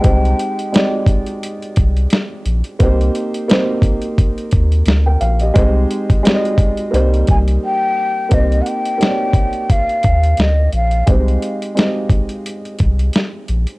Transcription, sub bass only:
X:1
M:4/4
L:1/16
Q:"Swing 16ths" 1/4=87
K:Cm
V:1 name="Sub bass" clef=bass
C,,2 z8 C,,2 z2 B,,, z | C,,2 z8 E,,2 D,,2 B,,,2 | C,,2 z6 C,,2 C,,2 z4 | C,,2 z8 E,,2 D,,2 B,,,2 |
C,,2 z8 C,,2 z2 B,,, z |]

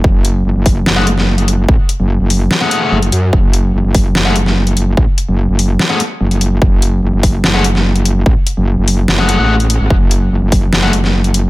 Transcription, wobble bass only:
X:1
M:4/4
L:1/16
Q:1/4=146
K:F#m
V:1 name="Wobble bass" clef=bass
F,,,4 F,,, F,,,3 F,,,8 | A,,, z2 F,,,2 F,,,3 z4 F,,,2 F,,2 | F,,,4 F,,, F,,,3 F,,,8 | A,,, z2 F,,,2 F,,,3 z4 F,,,4 |
F,,,4 F,,, F,,,3 F,,,8 | A,,, z2 F,,,2 F,,,3 F,,,3 A,,,4 G,,, | F,,,4 F,,, F,,,3 F,,,8 |]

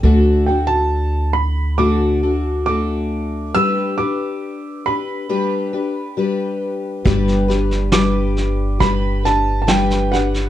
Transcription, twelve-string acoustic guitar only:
X:1
M:4/4
L:1/8
Q:1/4=68
K:G
V:1 name="Twelve-string acoustic guitar"
[D,A,DFA] [DFA]3 [D,A,DFA] [DFA] [A,DFA]2 | [G,DGB] [DGB]2 [DGB] [G,DGB] [DGB] [G,DGB]2 | [G,DGB] [DGB] [G,DGB]2 [G,DGB] [DGB] [G,DGB] [DGB] |]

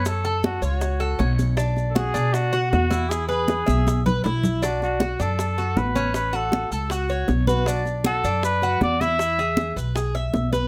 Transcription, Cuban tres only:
X:1
M:4/4
L:1/8
Q:1/4=158
K:Bdor
V:1 name="Cuban tres"
C A2 c2 A C2 | D2 F D2 F2 E- | E B2 e2 B E2 | D2 F D2 F2 C- |
C F2 A F c2 B | D2 F D2 F2 E- | E G2 B G e2 B |]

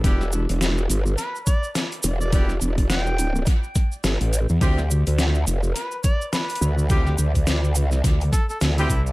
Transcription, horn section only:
X:1
M:4/4
L:1/16
Q:"Swing 16ths" 1/4=105
K:Ephr
V:1 name="Horn section"
[B,DEG] z12 z3 | [B,DEG] z12 z3 | [CEFG] z12 z3 | [CEFG] z12 [CEFG] z2 |]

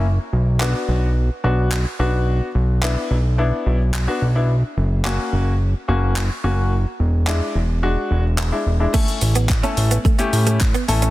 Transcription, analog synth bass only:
X:1
M:4/4
L:1/8
Q:1/4=108
K:Bm
V:1 name="Analog synth bass" clef=bass
F,,, B,,,2 B,,,2 B,,,2 B,,,- | B,,, B,,,2 B,,,2 B,,,2 B,,,- | B,,, F,,,2 F,,,2 F,,,2 F,,,- | F,,, E,,,2 E,,,2 E,,,2 E,,, |
[K:Amix] z A,,,2 A,,, z A,,2 A,,, |]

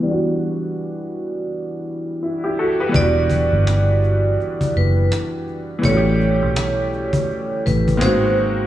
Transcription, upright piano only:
X:1
M:4/4
L:1/16
Q:"Swing 16ths" 1/4=83
K:Em
V:1 name="Upright piano"
z12 E [EG] [FA] [GB]- | [GB] z12 z3 | z16 |]
V:2 name="Upright piano"
[E,G,B,DF]16 | [E,G,B,DF]16 | [E,G,A,^CFG]12 [^D,^G,^A,^B,F]4 |]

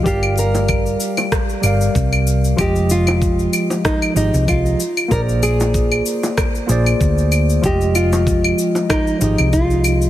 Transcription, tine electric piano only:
X:1
M:4/4
L:1/8
Q:"Swing 16ths" 1/4=95
K:Fdor
V:1 name="Tine electric piano"
[G,GBdf]4- [G,GBdf] [G,GBdf]3 | [F,A,FGe]4- [F,A,FGe] [F,FGAe]2 z | [B,FAcd]4- [B,FAcd] [B,FAcd]3 | [F,A,FGe]4- [F,A,FGe] [F,FGAe]3 |]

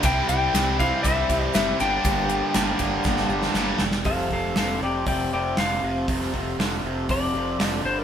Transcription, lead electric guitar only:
X:1
M:4/4
L:1/16
Q:1/4=119
K:Gdor
V:1 name="Lead electric guitar"
g2 g4 f2 e4 e2 g2- | g12- g2 z2 | [K:Fmix] [Af]2 [Af]2 [Af]2 [dg]2 [dg]2 [dg]2 f4 | z8 d6 c B |]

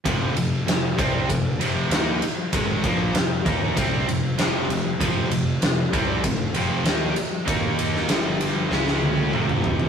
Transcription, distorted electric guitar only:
X:1
M:4/4
L:1/8
Q:1/4=97
K:Fm
V:1 name="Distorted electric guitar" clef=bass
[F,,C,F,] [F,,C,] [F,,C,] [C,G,C] [F,,C,] [F,,C,F,] [E,B,E] z | [A,,E,A,] [B,,F,B,] [F,,C,] [E,B,E] [C,G,C] [F,,C,] [F,,C,F,] [F,,C,] | [F,,C,F,] [F,,C,] [F,,C,] [C,G,C] [F,,C,] [F,,C,F,] [E,B,E] z | [E,B,E]2 [G,,=D,G,]2 [_D,A,D]2 [F,,C,F,]2 |]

